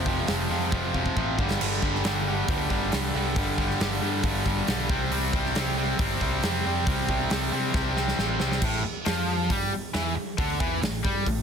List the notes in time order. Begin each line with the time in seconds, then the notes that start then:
Already playing: F1 A3
0.05 F2 C3 F3, kick
0.27 F1 F2 C3 F3, snare, open hi-hat
0.50 F2 C3 F3
0.71 F1 F2 C3 F3, kick
0.94 F2 C3 F3, kick
1.06 kick
1.16 A1 F2 C3 F3, kick
1.38 G1 G2 D3 G3, kick
1.51 snare
1.61 G1 G2 D3 G3, crash
1.82 G1 G2 D3 G3, kick
1.95 snare
2.04 G1 G2 D3 G3, snare, open hi-hat
2.27 G2 D3 G3
2.48 D2 G2 D3 G3, kick, open hi-hat
2.70 G1 G2 D3 G3, kick
2.92 C2 G2 D3 G3, snare, open hi-hat
3.14 C2 G2 D3 G3
3.36 G1 G2 D3 G3, kick, open hi-hat
3.58 G2 D3 G3, kick
3.70 snare
3.80 G1 G2 D3 G3, snare, open hi-hat
4.01 G2 D3 G3
4.23 G1 G2 D3 G3, kick, open hi-hat
4.45 G2 D3 G3, kick
4.67 B1 G2 D3 G3, snare, open hi-hat
4.89 C2 C3 G3 C4, kick
5.11 C2 C3 G3 C4, open hi-hat
5.33 C2 C3 G3 C4, kick
5.46 snare
5.55 C2 C3 G3 C4, snare, open hi-hat
5.77 C3 G3 C4
5.99 G1 C3 G3 C4, kick, open hi-hat
6.21 C2 C3 G3 C4, kick
6.43 F2 C3 G3 C4, snare, open hi-hat
6.65 F2 C3 G3 C4
6.86 C2 C3 G3 C4, kick, open hi-hat
7.09 C3 G3 C4, kick
7.30 C2 C3 G3 C4, snare, open hi-hat
7.52 C3 G3 C4
7.74 C2 C3 G3 C4, kick, snare
7.96 C3 G3 C4, snare
8.08 snare
8.18 A1 C3 G3 C4, snare
8.40 C2 C3 G3 C4, snare
8.52 snare
8.62 A1 A2, kick, crash
8.85 muted distorted electric guitar stroke, muted overdriven electric guitar stroke, muted picked electric bass stroke
9.05 F2 F3, snare, open hi-hat
9.50 G2 G3, kick, open hi-hat
9.72 muted picked electric bass stroke, muted overdriven electric guitar stroke, muted distorted electric guitar stroke
9.94 E2 E3, snare, open hi-hat
10.16 muted overdriven electric guitar stroke, muted picked electric bass stroke, muted distorted electric guitar stroke
10.38 D2 D3, kick, open hi-hat
10.60 E2 E3, kick
10.82 A1 A2, snare, open hi-hat
11.04 G2 G3, kick
11.26 A1 A2, kick, open hi-hat